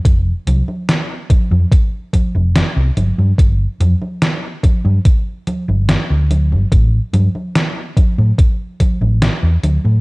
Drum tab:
HH |x-x-x-x-x-x-x-x-|x-x-x-x-x-x-x-x-|x-x-x-x-x-x-x-x-|
SD |----o-------o---|----o-------o---|----o-------o---|
CG |o-ooo-ooo-ooo-oo|o-ooo-ooo-ooo-oo|o-ooo-ooo-ooo-oo|
BD |o-----o-o-o-----|o-----o-o-------|o-----o-o-o-----|